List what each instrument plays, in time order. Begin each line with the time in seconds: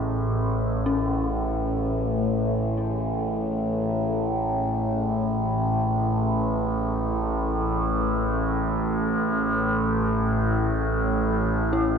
Already playing: synth drone A1 A2, analog synth pad C#4 G#4 D#5 E5
0.84 synth drone A1 A2, synth bell C#4
11.73 synth bell E4